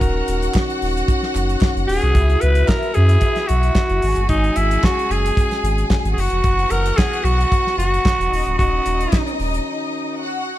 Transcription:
Already playing: D#3 C#4 F#4 A#4 F#5
0.01 D#1, kick, closed hi-hat
0.28 D#1, closed hi-hat
0.42 closed hi-hat
0.54 kick, snare, clap
0.70 closed hi-hat
0.82 D#1, open hi-hat
0.97 closed hi-hat
1.08 kick, closed hi-hat
1.23 snare
1.35 F#1, clap, closed hi-hat
1.49 closed hi-hat
1.61 kick, snare, clap
1.76 F#1, closed hi-hat
1.87 D#1 G#4, open hi-hat
2.01 C2, closed hi-hat
2.14 C#2 E3 B3 E4 E5, kick, closed hi-hat
2.30 closed hi-hat
2.41 C#2 B4, closed hi-hat
2.55 closed hi-hat
2.68 A#4, kick, snare, clap
2.83 closed hi-hat
2.94 F#2 G#4, closed hi-hat
3.09 closed hi-hat
3.21 kick, closed hi-hat
3.36 snare, closed hi-hat
3.47 B1 F#4, closed hi-hat
3.63 closed hi-hat
3.75 kick, snare, clap
3.89 F#1, closed hi-hat
4.01 G#1 C#3 G#3 G#4 G#5, open hi-hat
4.15 G1, closed hi-hat
4.29 G#1 D#4, kick, closed hi-hat
4.44 closed hi-hat
4.56 G#1 E4, closed hi-hat
4.71 closed hi-hat
4.84 F#4, kick, snare, clap
4.99 closed hi-hat
5.10 F#1 G#4, closed hi-hat
5.26 closed hi-hat
5.37 kick, closed hi-hat
5.51 snare, closed hi-hat
5.63 G#1, closed hi-hat
5.78 closed hi-hat
5.90 kick, snare, clap
6.05 G#1, closed hi-hat
6.13 E3 B3 F#4 G#4 F#5
6.17 F#1 F#4, open hi-hat
6.30 F1, closed hi-hat
6.44 F#1, kick, closed hi-hat
6.59 closed hi-hat
6.70 F#1 A#4, closed hi-hat
6.86 closed hi-hat
6.97 G#4, kick, snare, clap
7.13 closed hi-hat
7.24 B1 F#4, closed hi-hat
7.41 closed hi-hat
7.52 kick, closed hi-hat
7.67 snare
7.78 F#1 F#4, closed hi-hat
7.94 closed hi-hat
8.05 kick, snare, clap
8.19 E1, closed hi-hat
8.32 D#1 D#3 C#4 D#4 D#5, open hi-hat
8.46 D1, closed hi-hat
8.58 D#1 F#4, kick, closed hi-hat
8.86 D#1, closed hi-hat
9.01 closed hi-hat
9.13 kick, snare, clap
9.27 closed hi-hat
9.40 D#1, open hi-hat
9.54 closed hi-hat
10.19 F#4 F#5

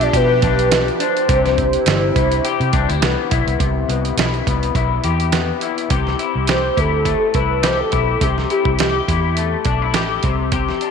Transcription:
Already playing: B2 F3 B3 D4 G4
0.01 D5, closed hi-hat
0.13 B2 G4 B4, kick, closed hi-hat
0.42 B1 D4 B4, kick, closed hi-hat
0.59 closed hi-hat
0.72 snare, closed hi-hat
0.88 closed hi-hat
1.00 D4 C5, closed hi-hat
1.17 closed hi-hat
1.28 C2 C3 E4 G4, kick, closed hi-hat
1.46 snare, closed hi-hat
1.58 kick, closed hi-hat
1.73 closed hi-hat
1.86 G1 G4, snare, closed hi-hat
2.16 C2 E4, kick, closed hi-hat
2.32 closed hi-hat
2.45 G4, closed hi-hat
2.60 C3, closed hi-hat
2.73 C2 D4, kick, closed hi-hat
2.89 D2 E4, closed hi-hat
3.02 C2 B3, snare, closed hi-hat
3.31 B1 E4, kick, closed hi-hat
3.47 C2, closed hi-hat
3.59 C2 C3, kick, closed hi-hat
3.88 C2 B3, closed hi-hat
4.05 closed hi-hat
4.17 B1 E4, snare, closed hi-hat
4.34 closed hi-hat
4.47 C2 B3, kick, closed hi-hat
4.63 closed hi-hat
4.75 B1 E4, kick, closed hi-hat
5.04 E2 G4, closed hi-hat
5.20 closed hi-hat
5.32 B3, snare, closed hi-hat
5.61 E4, closed hi-hat
5.78 closed hi-hat
5.90 C2 C3 G4, kick, closed hi-hat
6.07 snare
6.19 E4, closed hi-hat
6.35 C2
6.47 G4 C5, snare, closed hi-hat
6.77 D2 E4 A4, kick, closed hi-hat
7.05 A3, kick, closed hi-hat
7.34 C2 E4 B4, kick, closed hi-hat
7.63 G4 C5, snare, closed hi-hat
7.80 A4
7.92 B1 E4, kick, closed hi-hat
8.21 C2 C3 G4, kick, closed hi-hat
8.38 snare
8.50 E4 G4, closed hi-hat
8.65 C2, kick
8.79 G4, snare, closed hi-hat
9.08 E2 E4, kick, closed hi-hat
9.37 A3, closed hi-hat
9.65 B1 D4, kick, closed hi-hat
9.82 E4
9.94 A1 G4, snare, closed hi-hat
10.23 C2 C3, kick, closed hi-hat
10.52 C3 G4, kick, closed hi-hat
10.69 snare
10.81 D4, closed hi-hat

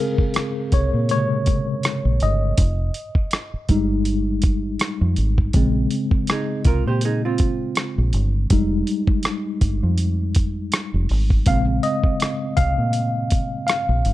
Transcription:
Already playing: C#3 G#3 C4 G#4
0.00 A#4
0.18 kick
0.34 cross-stick, closed hi-hat
0.72 C2 C#5, kick, closed hi-hat
0.94 A#2
1.09 C3 C#3 G#3 C#5, closed hi-hat
1.46 kick, closed hi-hat
1.83 cross-stick, closed hi-hat
2.05 A#1
2.20 G1 D#5, closed hi-hat
2.58 F1, kick, closed hi-hat
2.94 closed hi-hat
3.15 kick
3.31 cross-stick, closed hi-hat
3.54 muted fingered electric bass stroke
3.69 G1 G3 G#3 D#4, kick, closed hi-hat
4.05 closed hi-hat
4.42 kick, closed hi-hat
4.79 cross-stick, closed hi-hat
5.01 F2
5.16 G#1, closed hi-hat
5.38 kick
5.53 A#1 C#3 G#3 C4, kick, closed hi-hat
5.91 closed hi-hat
6.11 kick
6.27 D#4 G#4, cross-stick, closed hi-hat
6.65 C2 F4 A#4, kick, closed hi-hat
6.87 A#2 G4 C5
7.01 D#4, closed hi-hat
7.05 G#4
7.25 C4 F4
7.38 kick, closed hi-hat
7.75 cross-stick, closed hi-hat
7.98 A#1
8.13 G1, closed hi-hat
8.50 F1 G3 G#3 D#4, kick, closed hi-hat
8.87 closed hi-hat
9.07 kick
9.23 cross-stick, closed hi-hat
9.61 G1, kick, closed hi-hat
9.83 F2
9.98 closed hi-hat
10.35 kick, closed hi-hat
10.72 cross-stick, closed hi-hat
10.94 F1
11.09 G#1, open hi-hat
11.30 kick
11.46 A#1 C#3 G#3 C4 F5, kick, closed hi-hat
11.83 D#5, closed hi-hat
12.04 kick
12.20 cross-stick, closed hi-hat
12.57 C2 F5, kick, closed hi-hat
12.78 A#2
12.93 closed hi-hat
13.30 kick, closed hi-hat
13.67 F5, cross-stick, closed hi-hat
13.89 A#1
14.05 G1, closed hi-hat

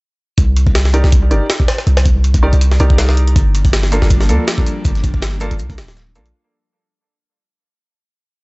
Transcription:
0.38 C2, kick, closed hi-hat
0.57 closed hi-hat
0.67 kick
0.75 snare, closed hi-hat
0.85 snare
0.94 D#4 G4 A#4 D5, closed hi-hat
1.04 C2, snare
1.12 kick, closed hi-hat
1.31 G1 D#4 G4 A#4 D5, closed hi-hat
1.50 snare, closed hi-hat
1.60 kick
1.68 snare, closed hi-hat
1.78 snare
1.87 C2, closed hi-hat
1.97 snare, closed hi-hat
2.06 kick, closed hi-hat
2.24 closed hi-hat
2.34 kick, closed hi-hat
2.43 D#4 G4 A#4 D5
2.53 C2, closed hi-hat
2.61 closed hi-hat
2.72 snare
2.80 C2 D#4 G4 A#4 D5, closed hi-hat
2.90 kick
2.98 snare, closed hi-hat
3.09 snare
3.17 closed hi-hat
3.27 closed hi-hat
3.36 G1 F3 G3 A#3 D4, kick, closed hi-hat, shaker
3.55 closed hi-hat, shaker
3.65 kick, closed hi-hat
3.73 snare, closed hi-hat, shaker
3.83 snare
3.92 A#3 D4 F4 A4, closed hi-hat, shaker
4.02 G1, snare
4.10 kick, closed hi-hat, shaker
4.20 snare, closed hi-hat
4.29 D2 A#3 D4 F4 A4, closed hi-hat, shaker
4.47 snare, closed hi-hat, shaker
4.58 kick
4.67 closed hi-hat, shaker
4.85 G1, kick, closed hi-hat, shaker
4.95 snare, closed hi-hat
5.04 kick, closed hi-hat, shaker
5.14 kick
5.22 snare, closed hi-hat, shaker
5.40 A#3 D4 F4 A4, closed hi-hat, shaker
5.51 G1, closed hi-hat
5.59 C2, closed hi-hat, shaker
5.70 kick, closed hi-hat
5.78 D1, snare, closed hi-hat, shaker
5.88 snare, closed hi-hat
5.96 snare, shaker
6.15 A#1 A#3 D4 F4 A4, closed hi-hat, shaker
6.26 closed hi-hat

